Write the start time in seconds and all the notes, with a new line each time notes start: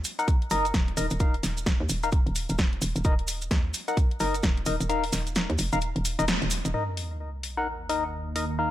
0.04 open hi-hat, maracas
0.19 D#4 A#4 F#5, closed hi-hat, maracas
0.28 kick, closed hi-hat, maracas
0.42 closed hi-hat
0.50 F#1 D#4 A#4 D#5, open hi-hat, maracas
0.65 closed hi-hat, maracas
0.74 D#1, kick, snare, closed hi-hat, maracas
0.88 closed hi-hat
0.97 D#1 D#4 A#4 D#5, open hi-hat, maracas
1.10 D#1, closed hi-hat, maracas
1.20 D#4 A#4 F5, kick, closed hi-hat, maracas
1.34 closed hi-hat
1.43 D#1, snare, open hi-hat, maracas
1.57 closed hi-hat, maracas
1.66 kick, snare, closed hi-hat, maracas
1.80 D#2
1.89 D#1, open hi-hat, maracas
2.03 D#4 A#4 F5, closed hi-hat, maracas
2.12 kick, closed hi-hat, maracas
2.26 D#1, closed hi-hat
2.35 open hi-hat, maracas
2.49 D#1, closed hi-hat, maracas
2.58 kick, snare, closed hi-hat, maracas
2.73 closed hi-hat
2.82 D#1, open hi-hat, maracas
2.96 D#1, closed hi-hat, maracas
3.04 D#1 D#4 A#4 D#5, kick, closed hi-hat, maracas
3.19 closed hi-hat
3.28 open hi-hat, maracas
3.41 closed hi-hat, maracas
3.51 D#2, kick, snare, closed hi-hat, maracas
3.74 open hi-hat, maracas
3.88 D#4 A#4 F#5, closed hi-hat, maracas
3.97 kick, closed hi-hat, maracas
4.11 closed hi-hat
4.20 F#1 D#4 A#4 D#5, open hi-hat, maracas
4.34 closed hi-hat, maracas
4.43 D#1, kick, snare, closed hi-hat, maracas
4.57 closed hi-hat
4.66 D#1 D#4 A#4 D#5, open hi-hat, maracas
4.80 D#1, closed hi-hat, maracas
4.89 D#4 A#4 F5, closed hi-hat, maracas
5.04 open hi-hat
5.13 D#1, snare, open hi-hat, maracas
5.27 closed hi-hat, maracas
5.35 snare, closed hi-hat, maracas
5.50 D#2, closed hi-hat
5.58 F1, open hi-hat, maracas
5.72 D#1 D#4 A#4 F5, closed hi-hat, maracas
5.81 closed hi-hat, maracas
5.96 D#1, closed hi-hat
6.05 open hi-hat, maracas
6.19 D#1 D#4 A#4 D#5, closed hi-hat, maracas
6.28 snare, closed hi-hat, maracas
6.42 D#1, closed hi-hat
6.50 open hi-hat, maracas
6.65 D#1, closed hi-hat, maracas
6.74 D#2 D#3 A#3 D#4 A#4 D#5, sub drop
6.97 open hi-hat
7.43 open hi-hat
7.57 D#4 A#4 F#5
7.89 D#4 A#4 D#5, open hi-hat
8.36 D#4 A#4 D#5, open hi-hat
8.59 D#4 A#4 F5